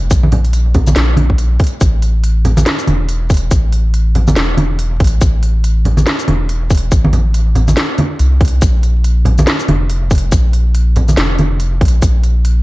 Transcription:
0.11 sub bass A#1, kick, closed hi-hat, shaker
0.23 high conga
0.32 closed hi-hat, low conga
0.45 closed hi-hat
0.53 closed hi-hat
0.74 kick, closed hi-hat, low conga
0.87 high conga, shaker
0.96 sub bass A#1, snare, closed hi-hat
1.17 closed hi-hat, high conga
1.30 kick
1.38 closed hi-hat
1.60 kick, closed hi-hat
1.64 closed hi-hat
1.67 closed hi-hat
1.81 sub bass A1, kick, closed hi-hat, shaker
2.02 closed hi-hat
2.24 closed hi-hat
2.45 closed hi-hat, low conga
2.57 high conga, shaker
2.66 snare, closed hi-hat
2.79 shaker
2.87 sub bass E1, closed hi-hat, high conga
3.09 closed hi-hat
3.30 kick, closed hi-hat, shaker
3.34 closed hi-hat
3.37 closed hi-hat
3.51 sub bass A1, kick, closed hi-hat, shaker
3.73 closed hi-hat
3.94 closed hi-hat
4.15 closed hi-hat, low conga
4.28 high conga, shaker
4.36 sub bass E1, snare, closed hi-hat
4.57 closed hi-hat, high conga
4.79 closed hi-hat
5.00 sub bass A1, kick, closed hi-hat
5.04 closed hi-hat
5.07 closed hi-hat
5.21 sub bass A1, kick, closed hi-hat, shaker
5.43 closed hi-hat
5.64 closed hi-hat
5.85 closed hi-hat, low conga
5.97 high conga, shaker
6.07 snare, closed hi-hat
6.19 shaker
6.28 sub bass E1, closed hi-hat, high conga
6.49 closed hi-hat
6.70 kick, closed hi-hat, shaker
6.75 closed hi-hat
6.77 closed hi-hat
6.92 sub bass A1, kick, closed hi-hat, shaker
7.04 high conga
7.13 closed hi-hat, low conga
7.34 closed hi-hat
7.55 closed hi-hat, low conga
7.68 high conga, shaker
7.77 snare, closed hi-hat
7.98 closed hi-hat, high conga
8.19 sub bass C2, closed hi-hat
8.41 kick, closed hi-hat
8.45 closed hi-hat
8.48 closed hi-hat
8.62 sub bass A#1, kick, closed hi-hat, shaker
8.83 closed hi-hat
9.04 closed hi-hat
9.25 closed hi-hat, low conga
9.38 high conga, shaker
9.47 snare, closed hi-hat
9.60 shaker
9.68 sub bass F1, closed hi-hat, high conga
9.90 closed hi-hat
10.11 kick, closed hi-hat, shaker
10.15 closed hi-hat
10.18 closed hi-hat
10.32 sub bass A#1, kick, closed hi-hat, shaker
10.53 closed hi-hat
10.75 closed hi-hat
10.96 closed hi-hat, low conga
11.08 high conga, shaker
11.17 sub bass F1, snare, closed hi-hat
11.39 closed hi-hat, high conga
11.60 closed hi-hat
11.81 sub bass A#1, kick, closed hi-hat
11.85 closed hi-hat
11.88 closed hi-hat
12.02 sub bass A#1, kick, closed hi-hat, shaker
12.24 closed hi-hat
12.45 closed hi-hat

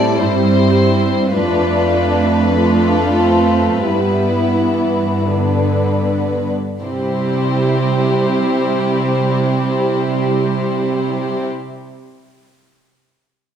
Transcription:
Already playing: cello section A2, viola section G3 C4, violin section E4 A4 D5
0.18 cello section G2, viola section C4, violin section E4 C5
1.34 cello section F2, viola section A3 D4, violin section D4 F4 B4
1.94 viola section D4
2.55 viola section A3 D4, violin section F4 A4
3.19 viola section C4
3.84 cello section G2, viola section G3 B3, violin section E4 B4
4.54 viola section E3
5.26 viola section D3 B3, violin section D4 B4
6.81 cello section C3, viola section G3 C4, violin section E4 G4 C5

